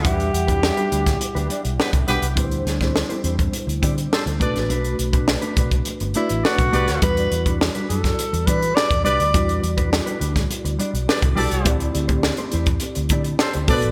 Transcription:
<<
  \new Staff \with { instrumentName = "Horn section" } { \time 4/4 \key e \minor \tempo 4 = 103 <b g' b'>16 r2 r8. <b g' b'>16 r16 <b g' b'>8 | r2. <g' a' c''>16 r16 <a' b' d''>8 | r2. <a' b' d''>16 r16 <g' b' d''>8~ | <g' b' d''>16 r2 r8. <g' b' d''>16 r16 <g' b' d''>8 |
r2. <g' b' d''>16 r16 <g' a' d''>8~ | <g' a' d''>16 r2 r8. <g' a' c''>16 r16 <a' b' d''>8 | }
  \new Staff \with { instrumentName = "Alto saxophone" } { \time 4/4 \key e \minor g'2. r4 | r1 | r2 r8 e'8 fis'4 | b'4 r8 a'4 b'8 d''8 d''8~ |
d''8 r2. r8 | r1 | }
  \new Staff \with { instrumentName = "Tine electric piano" } { \time 4/4 \key e \minor <g e' e'' fis''>1 | <g d' e' b' c''>2.~ <g d' e' b' c''>8 <a c' d' fis' b'>8~ | <a c' d' fis' b'>2~ <a c' d' fis' b'>8 <a d' fis' b'>4. | <g e' fis' d''>1 |
<g e' fis' d''>2.~ <g e' fis' d''>8 <g e' fis' d''>8 | <c' e' g' d''>2.~ <c' e' g' d''>8 <b fis' a' c'' d''>8 | }
  \new Staff \with { instrumentName = "Clean electric guitar" } { \time 4/4 \key e \minor <g d' fis' b'>8 r16 <g d' fis' b'>16 r16 <g d' fis' b'>16 <g d' fis' b'>16 r8 <g d' fis' b'>16 <g d' fis' d''>16 r8. <g d' fis' b'>16 r16 | <c' e' g' c''>8 r16 <c' e' g' c''>16 r16 <c' e' g' c''>16 <c' e' g' c''>16 r8. <c' e' g' d''>16 r8. <a d' fis' b'>16 r16 | <a d' fis' b'>8 r16 <a d' fis' b'>16 r16 <a d' fis' b'>16 <a d' fis' b'>16 r8. <a d' fis' d''>16 r8. <a d' fis' b'>16 r16 | <g d' fis' b'>8 r16 <g d' fis' b'>16 r16 <g d' fis' b'>16 <g d' fis' b'>16 r8. <g d' fis' d''>16 r8. <g d' fis' b'>16 r16 |
<g d' fis' b'>8 r16 <g d' fis' b'>16 r16 <g d' fis' b'>16 <g d' fis' b'>16 r8. <g d' fis' d''>16 r8. <g d' fis' b'>16 r16 | <a e' g' c''>8 r16 <a e' g' c''>16 r16 <a e' g' c''>16 <a e' g' c''>16 r8. <a e' g' d''>16 r8 <a e' g' c''>16 <a d' fis' b'>16 r16 | }
  \new Staff \with { instrumentName = "Fingered electric bass" } { \clef bass \time 4/4 \key e \minor e,8 e,8. r16 d,8 r16 d,16 r16 b,,16 r16 c,16 b,,16 c,16 | d,8 d,8. r16 e,8 r16 d,16 d8 r16 d,16 b,,16 a,,16 | b,,8 b,,8. r16 b,,8 r16 g,,16 r16 a,,16 r16 b,,16 c,16 d,16 | e,8 e,8. r16 fis,8 r16 e,16 e8 r16 e,16 c,16 d,16 |
e,8 e,8. r16 d,8 r16 d,16 r16 b,,16 r16 c,16 b,,16 c,16 | d,8 d,8. r16 e,8 r16 d,16 d8 r16 d,16 b,,16 a,,16 | }
  \new DrumStaff \with { instrumentName = "Drums" } \drummode { \time 4/4 <hh bd>16 hh16 hh16 <hh bd>16 sn16 hh16 hh16 <hh bd sn>16 hh16 hh16 hh16 hh16 sn16 <hh bd>16 hh16 hh16 | <hh bd>16 hh16 <hh sn>16 <hh bd sn>16 sn16 hh16 hh16 <hh bd>16 hh16 hh16 <hh bd>16 hh16 sn16 hh16 <hh bd>16 <hh sn>16 | hh16 hh16 hh16 <hh bd>16 sn16 hh16 <hh bd>16 <hh bd>16 hh16 hh16 hh16 hh16 sn16 <hh bd>16 hh16 <hh sn>16 | <hh bd>16 hh16 hh16 <hh bd>16 sn16 hh16 hh16 <hh bd sn>16 hh16 hh16 <hh bd>16 hh16 sn16 <hh bd>16 hh16 hh16 |
<hh bd>16 hh16 hh16 <hh bd>16 sn16 hh16 hh16 <hh bd sn>16 hh16 hh16 hh16 hh16 sn16 <hh bd>16 hho16 hh16 | <hh bd>16 hh16 hh16 <hh bd>16 sn16 hh16 hh16 <hh bd>16 hh16 hh16 <hh bd>16 hh16 sn16 hh16 <hho bd>16 hh16 | }
>>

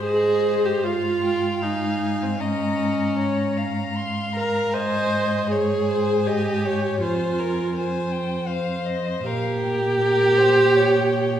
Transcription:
<<
  \new Staff \with { instrumentName = "Violin" } { \time 3/4 \key aes \major \tempo 4 = 78 ees''4 f''8 g''8 aes''4 | bes''4 bes''4 c'''8 bes''8 | aes''4 aes''2 | aes''4 aes''8 g''8 f''8 ees''8 |
f''8 g''2~ g''8 | }
  \new Staff \with { instrumentName = "Violin" } { \time 3/4 \key aes \major c''4 f''2 | ees''4 des''8 f''4. | ees''4 des''8 c''8 ees''8 des''8 | c''8 bes'8 c''4 c''4 |
bes'4 bes'8 c''8 des''4 | }
  \new Staff \with { instrumentName = "Viola" } { \time 3/4 \key aes \major aes'8. g'16 f'4 ees'8. c'16 | des'2 r8 bes'8 | c''4 aes'4 g'4 | f'2 r4 |
g'2. | }
  \new Staff \with { instrumentName = "Cello" } { \clef bass \time 3/4 \key aes \major aes,2.~ | aes,2. | aes,2. | f,2. |
bes,2. | }
>>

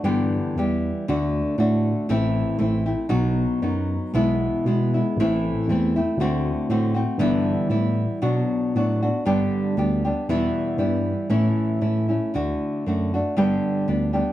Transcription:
<<
  \new Staff \with { instrumentName = "Nylon-string guitar" } { \time 2/4 \key g \major \tempo 4 = 117 <g, d e g b g'>4 <e g b g'>4 | <d a d' fis'>4 <d a d' fis'>4 | <a, e a c' e'>4 <e a c' e'>8 <a c' e'>8 | <b, fis b dis' fis'>4 <fis b dis' fis'>4 |
<b, e gis b e'>4 <e gis b e'>8 <gis b e'>8 | <a, e a c' e'>4 <e a c' e'>8 <a c' e'>8 | <d a c' fis'>4 <d a c' fis'>8 <a c' fis'>8 | <g, d e g b e'>4 <e g b e'>4 |
\key b \minor <b, fis b d' fis'>4 <fis b d' fis'>8 <b d' fis'>8 | <g, d g b d' g'>4 <g b d' g'>8 <g b d' g'>8 | <e, b, e g b e'>4 <e g b e'>4 | <a, e a cis' e'>4 <e a cis' e'>8 <a cis' e'>8 |
<d a d' fis'>4 <d a d' fis'>8 <a d' fis'>8 | <g, d g b d' g'>4 <g b d' g'>8 <g b d' g'>8 | }
  \new Staff \with { instrumentName = "Tine electric piano" } { \clef bass \time 2/4 \key g \major g,4 e,4 | d,4 a,4 | a,,4 a,,4 | b,,4 fis,4 |
b,,4 b,4 | a,,4 e,4 | d,4 a,4 | g,4 a,4 |
\key b \minor b,8 r8 a,4 | g,8 r8 d,4 | e,8 r8 g,4 | a,8 r8 a,4 |
d,8 r8 fis,4 | g,8 r8 d,4 | }
>>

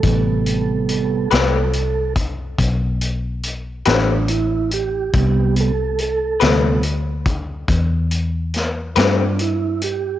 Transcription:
<<
  \new Staff \with { instrumentName = "Clean electric guitar" } { \time 12/8 \key a \minor \tempo 4. = 47 r4. <a c' g' b'>8 r2 r8 <a c' g' b'>8 r4 | r4. <a c' g' b'>8 r2 r8 <a c' g' b'>8 r4 | }
  \new Staff \with { instrumentName = "Tonewheel organ" } { \time 12/8 \key a \minor a'2~ a'8 r2 d'8 e'8 g'8~ | g'8 a'8 a'4 r2 r8 d'8 e'8 g'8 | }
  \new Staff \with { instrumentName = "Tonewheel organ" } { \clef bass \time 12/8 \key a \minor <c g b>4. r1 r8 | <c g b>8 r4 <c g b>8 r1 | }
  \new Staff \with { instrumentName = "Fingered electric bass" } { \clef bass \time 12/8 \key a \minor a,,4. c,4. b,,4. a,,4. | c,4. d,4. e,4. g,4. | }
  \new DrumStaff \with { instrumentName = "Drums" } \drummode { \time 12/8 <hh bd>8 hh8 hh8 <hh sn>8 hh8 <hh bd>8 <hh bd>8 hh8 hh8 <hh sn>8 hh8 hh8 | <hh bd>8 hh8 hh8 <hh sn>8 hh8 <hh bd>8 <hh bd>8 hh8 <hh sn>8 <hh sn>8 hh8 hh8 | }
>>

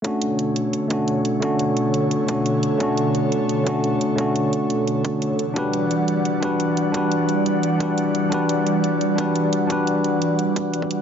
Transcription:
<<
  \new Staff \with { instrumentName = "Tine electric piano" } { \time 4/4 \key b \minor \tempo 4 = 174 <a cis' d' fis'>2~ <a cis' d' fis'>8 <a cis' d' fis'>4. | <a cis' d' fis'>2~ <a cis' d' fis'>8 <a cis' d' fis'>4. | <a cis' d' fis'>2~ <a cis' d' fis'>8 <a cis' d' fis'>4. | <a cis' d' fis'>2~ <a cis' d' fis'>8 r4. |
<d' fis' g' b'>2~ <d' fis' g' b'>8 <d' fis' g' b'>4. | <d' fis' g' b'>2~ <d' fis' g' b'>8 <d' fis' g' b'>4. | <d' fis' g' b'>2~ <d' fis' g' b'>8 <d' fis' g' b'>4. | <d' fis' g' b'>2~ <d' fis' g' b'>8 r4. | }
  \new Staff \with { instrumentName = "Analog synth pad" } { \time 4/4 \key b \minor <b, d a' cis''>1~ | <b, d a' cis''>1~ | <b, d a' cis''>1~ | <b, d a' cis''>2.~ <b, d a' cis''>8 <e g d'' fis''>8~ |
<e g d'' fis''>1~ | <e g d'' fis''>1~ | <e g d'' fis''>1~ | <e g d'' fis''>1 | }
  \new DrumStaff \with { instrumentName = "Drums" } \drummode { \time 4/4 <hh bd>8 hh8 hh8 hh8 hh8 <hh bd>8 hh8 hh8 | <hh bd>8 hh8 hh8 hh8 hh8 <hh bd>8 hh8 hh8 | <hh bd>8 hh8 hh8 hh8 hh8 <hh bd>8 hh8 hh8 | <hh bd>8 hh8 hh8 hh8 hh8 <hh bd>8 hh8 hh8 |
<hh bd>8 hh8 hh8 hh8 hh8 <hh bd>8 hh8 hh8 | <hh bd>8 hh8 hh8 hh8 hh8 <hh bd>8 hh8 hh8 | <hh bd>8 hh8 hh8 hh8 hh8 <hh bd>8 hh8 hh8 | <hh bd>8 hh8 hh8 hh8 hh8 <hh bd>8 hh16 bd16 hh8 | }
>>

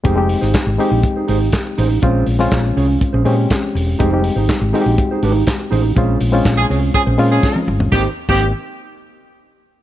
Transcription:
<<
  \new Staff \with { instrumentName = "Clean electric guitar" } { \time 4/4 \key f \minor \tempo 4 = 122 <ees' aes' c''>8 r16 <ees' aes' c''>16 r8 <ees' aes' c''>8 r16 <ees' aes' c''>16 <ees' aes' c''>8 r8 <ees' aes' c''>8 | <des' aes' c''>8 r16 <des' aes' c''>16 r8 <des' aes' des''>8 r16 <des' aes' c''>16 <des' aes' c''>8 r4 | <ees' aes' c''>8 r16 <ees' aes' c''>16 r8 <ees' aes' c''>8 r16 <ees' aes' c''>16 <ees' aes' c''>8 r8 <ees' aes' c''>8 | <des' aes' c''>8 r16 <des' aes' c''>16 r8 <des' aes' des''>8 r16 <des' aes' c''>16 <des' aes' c''>8 r4 |
<ees' g' c''>16 r8 <ees' g' c''>16 r2. | }
  \new Staff \with { instrumentName = "Horn section" } { \time 4/4 \key f \minor r1 | r1 | r1 | r4 r16 <f des' aes'>16 r8 <f des' aes'>16 r8 <f des' aes'>8. r8 |
<ees c' g'>16 r8 <ees c' g'>8 r2 r8. | }
  \new Staff \with { instrumentName = "Reed electric piano" } { \time 4/4 \key f \minor <aes c' ees' g'>16 <aes c' ees' g'>4 r16 <aes c' ees' g'>4. r4 | <aes c' des' f'>8 r16 <aes c' des' f'>4~ <aes c' des' f'>16 r8 <aes c' des' g'>4~ <aes c' des' g'>16 r16 | <aes c' ees' g'>16 <g aes c' ees' g'>4 r16 <aes c' ees' ges' g'>4. r4 | <aes c' des' f'>8 r16 <aes c' des' f'>4~ <aes c' des' f'>16 r8 <aes c' des' f'>4~ <aes c' des' f'>16 r16 |
<bes c' ees' g'>16 r8 <bes c' ees' g'>8 r2 r8. | }
  \new Staff \with { instrumentName = "Fingered electric bass" } { \clef bass \time 4/4 \key f \minor f,,8. aes,,16 r16 aes,,16 r16 bes,,16 r8 aes,,8 r8 a,,8 | bes,,8 bes,,8 bes,,8 c,8 r16 bes,,16 bes,8 r8 fes,,8 | f,,8. aes,,16 r16 aes,,16 r16 bes,,16 r8 aes,,8 r8 a,,8 | bes,,8 bes,,8 bes,,8 c,8 r16 bes,,16 bes,8 r8 g,,8 |
aes,,16 r8 aes,,8 r2 r8. | }
  \new DrumStaff \with { instrumentName = "Drums" } \drummode { \time 4/4 <hh bd>8 hho16 sn16 <hc hh bd sn>8 hho8 <hh bd>8 hho8 <hc hh bd sn>8 hho8 | <hh bd>8 hho16 sn16 <hc hh bd sn>8 hho8 <hh bd>8 hho8 <hc hh bd sn>8 hho8 | <hh bd>8 hho8 <hc hh bd sn>8 hho8 <hh bd>8 hho8 <hc hh bd sn>8 hho8 | <hh bd>8 hho8 <hc hh bd sn>8 hho8 <hh bd>8 hho8 <bd sn>16 tommh16 toml16 tomfh16 |
<bd sn>8. <cymc bd>16 r4 r4 r4 | }
>>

